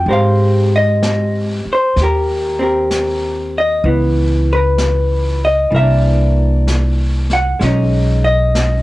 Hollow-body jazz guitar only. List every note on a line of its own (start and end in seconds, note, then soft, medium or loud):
0.08 3.84 G#3 soft
0.08 2.58 C4 soft
0.08 2.00 G4 soft
0.08 2.02 A#4 soft
0.08 1.71 C5 medium
0.13 0.75 F5 medium
0.76 1.64 D#5 medium
1.73 2.01 C5 medium
2.01 2.60 G4 soft
2.01 2.61 A#4 medium
2.59 3.84 C4 soft
2.59 3.85 G4 soft
2.59 3.58 A#4 soft
3.58 3.87 D#5 medium
3.85 5.69 E3 soft
3.85 5.73 B3 soft
4.53 4.58 A#4 medium
4.53 5.41 B4 medium
5.45 5.72 D#5 medium
5.71 7.59 E3 soft
5.75 7.61 A#3 soft
5.75 7.57 A#4 medium
5.75 7.27 E5 medium
5.81 7.64 D4 medium
7.33 7.60 F#5 medium
7.59 8.82 G#3 soft
7.59 8.82 C#4 soft
7.64 8.82 D#4 medium
8.24 8.82 D#5 medium